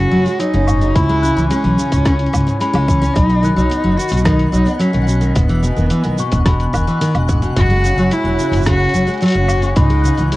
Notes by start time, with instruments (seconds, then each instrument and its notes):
Already playing: steel-string acoustic guitar C#3, cello F#4, ambient pad F#4 C#5 G#5
0.11 upright bass F#1, steel-string acoustic guitar F#3
0.26 steel-string acoustic guitar G#3, closed hi-hat, shaker
0.39 steel-string acoustic guitar F#3, cello D#4, closed hi-hat, shaker
0.54 upright bass F#1, steel-string acoustic guitar C#3, closed hi-hat
0.67 steel-string acoustic guitar G#2, glockenspiel C#6, low woodblock, shaker
0.81 steel-string acoustic guitar C#3, closed hi-hat, shaker
0.94 upright bass C#2, steel-string acoustic guitar G#2, cello E4, ambient pad E4, glockenspiel B5, kick, closed hi-hat, shaker
1.09 steel-string acoustic guitar G#3, closed hi-hat
1.22 steel-string acoustic guitar C#3, glockenspiel F#6, shaker
1.37 upright bass C#2, steel-string acoustic guitar E3, shaker
1.50 steel-string acoustic guitar G#3, cello C#4, closed hi-hat, shaker
1.64 upright bass B1, steel-string acoustic guitar E3, closed hi-hat
1.78 steel-string acoustic guitar C#3, shaker
1.92 upright bass C#2, steel-string acoustic guitar G#2, kick, closed hi-hat, shaker
2.05 steel-string acoustic guitar C#3, kick, cross-stick, closed hi-hat, shaker
2.19 closed hi-hat
2.26 closed hi-hat
2.33 upright bass C#2, steel-string acoustic guitar G#2, kick, closed hi-hat, low woodblock, shaker
2.40 closed hi-hat
2.47 steel-string acoustic guitar G#2, closed hi-hat, shaker
2.59 steel-string acoustic guitar G#3, cello C#4, glockenspiel B5, closed hi-hat, shaker
2.73 upright bass C#2, steel-string acoustic guitar G#3, closed hi-hat, low woodblock
2.88 steel-string acoustic guitar E3, glockenspiel B5, kick, shaker
3.02 steel-string acoustic guitar C#4, closed hi-hat, shaker
3.14 upright bass B1, steel-string acoustic guitar B2, cello D#4, ambient pad F#4 D#5 B5, synth texture F#5, kick, closed hi-hat, shaker
3.18 glockenspiel B5
3.29 steel-string acoustic guitar B3, closed hi-hat
3.43 steel-string acoustic guitar D#3, glockenspiel F#6, shaker
3.56 upright bass B1, steel-string acoustic guitar F#3, cello D#4, shaker
3.70 steel-string acoustic guitar B3, closed hi-hat, shaker
3.84 upright bass F#1, steel-string acoustic guitar F#3
3.97 steel-string acoustic guitar D#3, cello F#4, shaker
4.08 upright bass B1, steel-string acoustic guitar B2, closed hi-hat, shaker
4.12 shaker
4.17 shaker
4.25 steel-string acoustic guitar D#3, cello D#4, kick, cross-stick, closed hi-hat, shaker
4.39 closed hi-hat
4.52 upright bass B1, steel-string acoustic guitar F#3, cello D#4, shaker
4.66 steel-string acoustic guitar B3, closed hi-hat, shaker
4.79 steel-string acoustic guitar F#3, cello C#4, glockenspiel B6, closed hi-hat, shaker
4.93 upright bass B1, steel-string acoustic guitar D#3, closed hi-hat
5.07 steel-string acoustic guitar B2, shaker
5.21 steel-string acoustic guitar D#3, closed hi-hat, shaker
5.35 upright bass E1, steel-string acoustic guitar G#2, cello B3, ambient pad G#5, kick, closed hi-hat, shaker
5.49 steel-string acoustic guitar E3, closed hi-hat
5.63 steel-string acoustic guitar B2, shaker
5.76 upright bass E1, steel-string acoustic guitar D#3, shaker
5.90 steel-string acoustic guitar E3, closed hi-hat, shaker
6.04 upright bass B1, steel-string acoustic guitar D#3, closed hi-hat
6.18 steel-string acoustic guitar B2, glockenspiel C#6, shaker
6.32 upright bass E1, steel-string acoustic guitar G#2, kick, closed hi-hat, shaker
6.46 steel-string acoustic guitar B2, glockenspiel B5, kick, cross-stick, closed hi-hat, shaker
6.60 closed hi-hat
6.73 upright bass E1, steel-string acoustic guitar D#3, glockenspiel F#6, kick, low woodblock, shaker
6.87 steel-string acoustic guitar E3, closed hi-hat, shaker
7.01 steel-string acoustic guitar D#3, closed hi-hat, shaker
7.15 upright bass E1, steel-string acoustic guitar B2, closed hi-hat, low woodblock
7.28 steel-string acoustic guitar G#2, kick, shaker
7.42 steel-string acoustic guitar B2, closed hi-hat, shaker
7.56 upright bass F#1, steel-string acoustic guitar G#2, ambient pad F#4 C#5, cello F#4, kick, closed hi-hat, shaker
7.70 steel-string acoustic guitar G#3, closed hi-hat
7.84 steel-string acoustic guitar C#3, shaker
7.98 upright bass F#1, steel-string acoustic guitar F#3, shaker
8.11 steel-string acoustic guitar G#3, cello E4, glockenspiel B6, closed hi-hat, shaker
8.24 upright bass E1, steel-string acoustic guitar F#3
8.39 steel-string acoustic guitar C#3, shaker
8.52 upright bass F#1, steel-string acoustic guitar G#2, closed hi-hat, shaker
8.56 shaker
8.58 shaker
8.61 shaker
8.62 shaker
8.65 steel-string acoustic guitar C#3, cello F#4, kick, cross-stick, closed hi-hat, shaker
8.80 closed hi-hat
8.84 closed hi-hat
8.89 closed hi-hat
8.93 upright bass F#1, steel-string acoustic guitar F#3, shaker
9.07 steel-string acoustic guitar G#3, closed hi-hat, shaker
9.10 closed hi-hat
9.14 closed hi-hat
9.18 closed hi-hat
9.21 steel-string acoustic guitar F#3, closed hi-hat, shaker
9.23 cello F#4, closed hi-hat
9.25 closed hi-hat
9.28 closed hi-hat
9.30 closed hi-hat
9.32 upright bass F#1, steel-string acoustic guitar C#3, closed hi-hat
9.48 steel-string acoustic guitar G#2, glockenspiel C#6, low woodblock, shaker
9.62 steel-string acoustic guitar C#3, closed hi-hat, shaker
9.76 upright bass C#2, steel-string acoustic guitar G#2, ambient pad E3, cello D#4, glockenspiel B5, kick, closed hi-hat, shaker
9.90 steel-string acoustic guitar G#3, closed hi-hat
10.02 steel-string acoustic guitar C#3, glockenspiel F#6, shaker
10.18 upright bass C#2, steel-string acoustic guitar E3, closed hi-hat, shaker
10.32 steel-string acoustic guitar G#3, cello E4, closed hi-hat, shaker